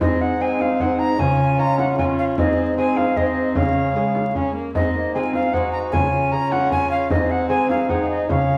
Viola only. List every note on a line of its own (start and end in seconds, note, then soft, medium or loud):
0.01 0.38 C4 medium
0.40 1.18 C4 medium
1.19 1.97 C#4 medium
1.98 2.39 C#4 medium
2.38 2.76 C4 medium
2.77 3.15 C4 medium
3.17 3.58 C4 medium
3.56 3.92 C#4 medium
3.95 4.32 G#3 medium
4.35 4.55 C#4 medium
4.55 4.75 A#3 medium
4.76 4.97 C4 medium
4.95 5.16 A#3 medium
5.15 5.54 C4 medium
5.54 5.94 D#4 medium
5.93 7.12 C#4 medium
7.11 7.91 C4 medium
7.90 8.31 D#4 medium
8.29 8.58 C#4 soft